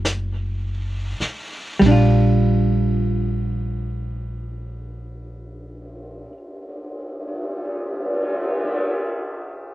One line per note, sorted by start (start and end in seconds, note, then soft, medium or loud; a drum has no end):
0.00 1.16 F#1 medium
0.00 1.79 F#3 soft
0.00 1.83 A3 soft
0.00 1.83 D#4 soft
0.05 brush sweep soft
0.05 snare soft
0.05 hi-hat pedal medium
1.20 muted upright bass stroke soft
1.20 snare soft
1.79 6.23 A#1 medium
1.79 6.25 G3 soft
1.79 kick soft
1.79 ride soft
1.86 6.32 D4 soft
1.91 6.37 F4 medium
3.06 cymbal swell soft